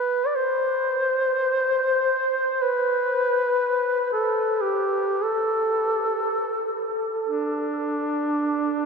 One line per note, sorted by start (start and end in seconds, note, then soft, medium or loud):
0.00 0.28 B4 medium
0.27 0.37 D5 medium
0.36 2.63 C5 medium
2.62 4.12 B4 medium
4.13 4.63 A4 medium
4.62 5.25 G4 medium
5.23 6.91 A4 medium
7.25 8.86 D4 medium